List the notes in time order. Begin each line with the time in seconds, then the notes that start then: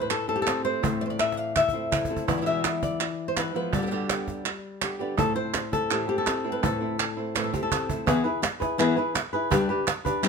Already playing: A2 C5
0.01 B4
0.10 A4, muted nylon-string guitar stroke, cajon slap, clap
0.28 A3 C4 E4 A4
0.36 G4
0.42 A4
0.47 C4, cajon slap, clap
0.64 A3 C4 E4 C5
0.83 A2 E3 A3 C4 E4, cajon bass
1.01 D5
1.06 C5
1.10 D5
1.18 E3 A3 C4 E4 E5, cajon slap, clap
1.32 cajon slap
1.37 F5
1.55 E5, muted nylon-string guitar stroke, cajon bass, clap
1.69 cajon bass
1.73 A3 C4 E4
1.91 E4, cajon bass, clap
2.05 cajon bass
2.09 A3 C4 E4 A4 C5
2.16 cajon bass
2.27 E2 B2 E3 G#3 B3 E4 D5, cajon bass
2.37 B2 E3 G#3 B3 E4
2.42 B2 E3 G#3 B3 E4
2.46 E2 B2 E3 G#3 B3 E4 E5, cajon slap
2.64 E3 G#3 B3 E4, cajon slap, clap
2.83 D5, cajon bass
3.00 muted nylon-string guitar stroke, clap
3.28 C5
3.37 E3 G#3 B3 E4 B4, cajon slap, clap
3.54 E3 F3 G#3 B3 E4 B4
3.72 G2 B2 D3 G3 B3 G4 D5, cajon bass
3.77 B2 D3 G3 B3 G4
3.82 B2 D3 G3 B3 G4
3.86 B2 D3 G3 B3 G4
3.91 G2 B2 D3 G3 B3 G4, cajon slap
4.09 D3 G3 B3 G4, cajon slap, clap
4.28 cajon bass, cajon slap
4.45 muted nylon-string guitar stroke, clap
4.81 D3 G3 B3 G4, cajon slap, clap
4.99 D3 G3 B3 G4 B4 D5
5.17 A2 E3 A3 C4 E4 A4, cajon bass
5.35 A3 C4 E4 C5
5.54 muted nylon-string guitar stroke, cajon slap, clap
5.72 A3 C4 E4 A4, cajon bass
5.89 A2 E3 A3 C4 E4 G4, clap
6.08 A3 C4 E4 G4
6.18 A4
6.26 C4, muted nylon-string guitar stroke, cajon slap, clap
6.45 A3 C4 E4
6.52 B4
6.63 A2 E3 A3 C4 E4 A4, cajon bass
6.81 A3 C4 E4
6.98 muted nylon-string guitar stroke, cajon slap, clap
7.17 A3 C4 E4
7.35 A2 E3 A3 C4 E4 B4, cajon slap, clap
7.44 A4
7.53 A3 C4 E4 G4, cajon bass
7.63 A4
7.71 C4, muted nylon-string guitar stroke, cajon bass, clap
7.89 A3 C4 E4 A4, cajon bass
8.07 E3 B3 E4 G#4 B4, cajon bass
8.24 E4 G#4 B4, cajon slap
8.42 muted nylon-string guitar stroke, cajon slap, clap
8.60 E4 G#4 B4, cajon bass, cajon slap
8.78 E3 B3 E4 G#4 B4, cajon slap, clap
8.97 E4 G#4 B4
9.15 muted nylon-string guitar stroke, cajon slap, clap
9.33 E4 G#4 B4
9.51 G3 D4 G4 B4, cajon bass
9.69 D4 G4 B4, cajon slap
9.87 muted nylon-string guitar stroke, cajon slap, clap
10.05 D4 G4 B4, cajon bass
10.23 G3 D4 G4 B4, cajon slap, clap